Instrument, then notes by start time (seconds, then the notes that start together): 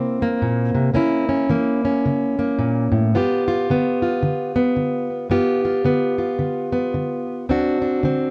steel-string acoustic guitar
Already playing: C3 A#3 C4 E4
0.22 A#3
0.42 A#2
0.75 C3
0.94 C#3 A#3 C#4 E4
1.29 C#4
1.49 E3 A#3
1.85 C#4
2.05 C#3
2.39 A#3
2.59 A#2
2.92 A2
3.14 G2 B3 F4 G4
3.48 F4
3.70 D3 B3
4.02 F4
4.23 D3
4.56 B3
4.77 D3
5.30 G2 B3 F4 G4
5.65 F4
5.84 D3 B3
6.18 F4
6.39 D3
6.72 B3
6.94 D3
7.49 D2 C4 D4 F#4
7.82 D4
8.03 D3 C4